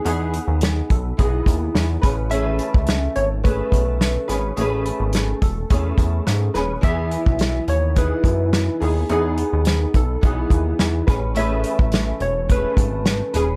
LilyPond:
<<
  \new Staff \with { instrumentName = "Synth keys" } { \time 4/4 \key e \major \tempo 4 = 106 gis'4. a'8 gis'4. r8 | e''4. cis''8 b'4. gis'8 | gis'4. a'8 gis'4. r8 | e''4. cis''8 b'4. gis'8 |
gis'4. a'16. a'32 gis'4. r8 | e''4. cis''8 b'4. gis'8 | }
  \new Staff \with { instrumentName = "Nylon-string guitar" } { \time 4/4 \key e \major <b dis' gis'>2 <e b dis' gis'>4. <cis' gis' b'>8 | <a cis' gis' b'>2 <a cis' gis' b'>4. <cis' gis' b'>8 | <a cis' gis' b'>2 <a cis' gis' b'>4. <cis' gis' b'>8 | <e b gis'>2 <e b dis' gis'>4. <b dis' gis'>8 |
<b dis' gis'>2 <e b dis' gis'>4. <cis' gis' b'>8 | <a cis' gis' b'>2 <a cis' gis' b'>4. <cis' gis' b'>8 | }
  \new Staff \with { instrumentName = "Analog synth bass" } { \clef bass \time 4/4 \key e \major e,8. dis,8. b,,8 b,,8 dis,8 e,8 a,,8~ | a,,8. cis,8. gis,,4 b,,4 gis,,8 | a,,8. gis,,8. e,,8 e,8 e,8 gis,8 dis,,8 | e,8. b,,8. dis,4 fis,4 dis,8 |
e,8. dis,8. b,,8 b,,8 dis,8 e,8 a,,8~ | a,,8. a,,8. e,,4 gis,,4 dis,,8 | }
  \new DrumStaff \with { instrumentName = "Drums" } \drummode { \time 4/4 hh8 hh8 <hh sn>8 <hh bd>8 <hh bd>8 <hh bd>8 <hh sn>8 <hh bd sn>8 | hh8 hh16 bd16 <hh sn>8 hh8 <hh bd>8 <hh bd>8 <hh sn>8 <hh sn>8 | hh8 hh8 <hh sn>8 <hh bd>8 <hh bd>8 <hh bd>8 <hh sn>8 <hh sn>8 | <hh bd>8 hh16 bd16 <hh sn>8 hh8 <hh bd>8 <hh bd>8 <hh sn>8 hho8 |
hh8 hh8 <hh sn>8 <hh bd>8 <hh bd>8 <hh bd>8 <hh sn>8 <hh bd sn>8 | hh8 hh16 bd16 <hh sn>8 hh8 <hh bd>8 <hh bd>8 <hh sn>8 <hh sn>8 | }
>>